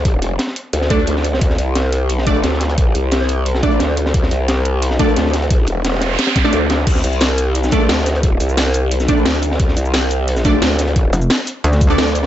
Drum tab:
CC |----------------|----------------|----------------|----------------|
HH |x-x-x-x-x-xxx-x-|x-x-x-x-x-xxx-xx|x-x-x-x-x-xxx-x-|x-x-x-x-x-xxx-xx|
SH |----------------|----------------|----------------|----------------|
SD |----oo---o---o-o|-o--o----o--ooo-|----oo---o--o--o|-o--o----o--ooo-|
BD |o---------o-----|o---------o-----|o---------o-----|o---------o-----|

CC |----------------|x---------------|----------------|----------------|
HH |x-x-x-x-xxxxx-x-|x-x-x-x-x-xxx-xx|x-x-x-x-x-xxx-x-|x-x-x-x-x-xxx-xx|
SH |----------------|--xx--x--xx---x-|--xx--x--xx--xx-|--xx--x--xx---x-|
SD |----ooo-oooo--o-|-o--o----o--ooo-|----oo---o--o--o|-o--o----o--ooo-|
BD |o---------o-----|o---------o-----|o---------o-----|o---------o-----|

CC |----------------|
HH |x-x-x-x-x-xxx-x-|
SH |--xx--x--xx--xx-|
SD |----oo---o--oo-o|
BD |o---------o-----|